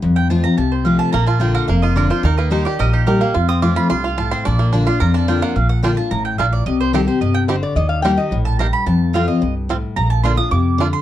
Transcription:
<<
  \new Staff \with { instrumentName = "Mandolin" } { \time 4/4 \key bes \major \tempo 4 = 217 r8 g''8 a''8 bes''8 a''8 c''8 f''8 a''8 | bes''8 a''8 g''8 ges''8 f''8 ees''8 d''8 c''8 | bes'8 ces''8 c''8 d''8 ees''8 g'8 bes'8 f''8~ | f''8 ees'''8 d'''8 ces'''8 c'''8 f''8 a''8 c'''8 |
d'''4. c'''8 bes''8 a''8 g''8 ges''8 | f''8 ges''8 g''8 a''8 bes''8 g''8 f''8 d''8 | ees''8 c''8 a'8 c''8 ees''8 g''8 r4 | r2 r8 a''8 bes''8 ces'''8 |
a''4 f''8 ees''4 r4. | bes''8 a''8 c'''8 ees'''8 d'''4. c'''8 | }
  \new Staff \with { instrumentName = "Resonator guitar played with a steel bar" } { \time 4/4 \key bes \major r1 | r1 | r1 | r1 |
r1 | r1 | r2. c''8 d''8 | ees''8 f''8 g''8 ees''8. r4. r16 |
r1 | r1 | }
  \new Staff \with { instrumentName = "Five-string banjo" } { \time 4/4 \key bes \major r1 | bes8 f'8 bes8 bes'8 bes8 f'8 bes'8 f'8 | ees'8 bes8 ees'8 g'8 bes'8 ees'8 g'8 bes8 | f'8 c'8 f'8 f'8 f'8 f'8 f'8 c'8 |
d'8 bes8 d'8 f'8 bes'8 d'8 f'8 bes8 | r4 <bes d' f'>8 r4. <bes d' f'>8 r8 | r4 <c' ees' g'>8 r4. <c' ees' g'>8 r8 | r4 <bes ees' g'>8 r4. <bes ees' g'>8 r8 |
r4 <c' f'>8 r4. <c' f'>8 r8 | r4 <bes d' f'>8 r4. <bes d' f'>8 r8 | }
  \new Staff \with { instrumentName = "Steel-string acoustic guitar" } { \time 4/4 \key bes \major << { r4 <f a c' f'>8 <c' f'>8 r4 <f a c' f'>4 | r4 <d bes d' f'>4 r4 <d bes d' f'>8 <d' f'>8 | r4 <g bes ees' g'>8 <ees' g'>8 r4 <g bes ees' g'>8 <ees' g'>8 | r4 <f a c' f'>4 r2 |
r4 <d bes d' f'>8 <d' f'>8 r4 <d bes d' f'>8 <d' f'>8 | r4 <d bes d' f'>8 <d' f'>8 r2 | r4 <ees g c' g'>8 <c' g'>8 r2 | r4 <g bes ees' g'>8 <ees' g'>8 r2 |
r4 <f a c' f'>8 <c' f'>8 r2 | r4 <d bes d' f'>8 <d' f'>8 r2 | } \\ { f,2 c2 | bes,2 f,2 | ees2 bes,2 | f,2 g,4 a,4 |
bes,2 f,2 | bes,2 a,4 bes,4 | c2 c4 d4 | ees2 a,4 g,4 |
f,2 g,4 a,4 | bes,2 c4 d4 | } >> }
  \new Staff \with { instrumentName = "Upright bass" } { \clef bass \time 4/4 \key bes \major f,2 c,2 | bes,,2 f,,2 | ees,2 bes,,2 | f,2 c,2 |
bes,,2 f,2 | bes,,2 a,,4 bes,,4 | c,2 g,,2 | ees,2 bes,,2 |
f,2 c,2 | bes,,2 f,2 | }
>>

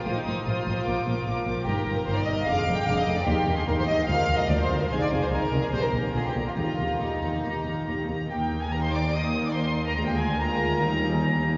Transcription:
<<
  \new Staff \with { instrumentName = "Violin section" } { \time 4/4 \key ees \major \tempo 4 = 146 ees'''8 ees'''8 ees'''8 ees'''8 d'''8 d'''8 d'''8 d'''8 | bes''8 bes''8 bes''8 bes''8 d'''8 d'''8 d'''8 d'''8 | c'''8 c'''8 c'''8 c'''8 f''8 f''8 f''8 f''8 | aes''8 aes''8 aes''8 aes''8 bes''8 bes''8 bes''8 bes''8 |
bes''8 bes''8 bes''8 bes''8 bes''8 bes''8 bes''8 bes''8 | g''8. aes''16 bes''16 c'''16 d'''8 ees'''8. d'''16 c'''8. bes''16 | bes''16 g''16 aes''8 bes''2~ bes''8 r8 | }
  \new Staff \with { instrumentName = "Violin section" } { \time 4/4 \key ees \major f'16 ees'16 ees'8 f'2~ f'8 r8 | g'8. bes'16 c''16 d''16 ees''8 f''8. g''16 f''16 ees''8 d''16 | g'8. aes'16 bes'16 c''16 ees''8 f''8. ees''16 d''16 c''8 bes'16 | c''16 d''8 c''16 bes'8. aes'16 c''16 bes'8. aes'16 g'8 f'16 |
f'4 ees'2~ ees'8 r8 | g'8. aes'16 bes'16 c''16 d''8 ees''8. d''16 c''8. bes'16 | bes'16 g'16 aes'8 bes'2~ bes'8 r8 | }
  \new Staff \with { instrumentName = "Viola section" } { \time 4/4 \key ees \major <f c''>8 <f c''>8 <f c''>8 <f c''>8 <f bes'>8 <f bes'>8 <f bes'>8 <f bes'>8 | <ees bes'>8 <ees bes'>8 <ees bes'>8 <ees bes'>8 <d aes'>8 <d aes'>8 <d aes'>8 <d aes'>8 | <ees g'>8 <ees g'>8 <ees g'>8 <ees g'>8 <f bes'>8 <f bes'>8 <f bes'>8 <f bes'>8 | <ees aes'>8 <ees aes'>8 <ees aes'>8 <ees aes'>8 <ees g'>8 <ees g'>8 <d f'>8 <d f'>8 |
<ees g'>8 <ees g'>8 <ees g'>8 <ees g'>8 <ees g'>8 <ees g'>8 <ees g'>8 <ees g'>8 | <bes ees'>4 <bes ees'>4 <bes ees'>2 | <aes f'>4 <aes f'>4 <g ees'>2 | }
  \new Staff \with { instrumentName = "Cello section" } { \clef bass \time 4/4 \key ees \major a,8 a,8 a,8 a,8 bes,8 bes,8 bes,8 bes,8 | g,8 g,8 g,8 g,8 f,8 f,8 f,8 f,8 | ees,8 ees,8 ees,8 ees,8 d,8 d,8 d,8 d,8 | c8 c8 c8 c8 bes,8 bes,8 bes,8 bes,8 |
ees,8 ees,8 ees,8 ees,8 ees,8 ees,8 ees,8 ees,8 | ees,1 | d,2 ees,2 | }
  \new Staff \with { instrumentName = "Double bass section" } { \clef bass \time 4/4 \key ees \major a,,8 a,,8 a,,8 a,,8 bes,,8 bes,,8 bes,,8 bes,,8 | g,,8 g,,8 g,,8 g,,8 f,,8 f,,8 f,,8 f,,8 | ees,8 ees,8 ees,8 ees,8 d,8 d,8 d,8 d,8 | c,8 c,8 c,8 c,8 bes,,8 bes,,8 bes,,8 bes,,8 |
ees,8 ees,8 ees,8 ees,8 ees,8 ees,8 ees,8 ees,8 | ees,1 | d,2 ees,2 | }
>>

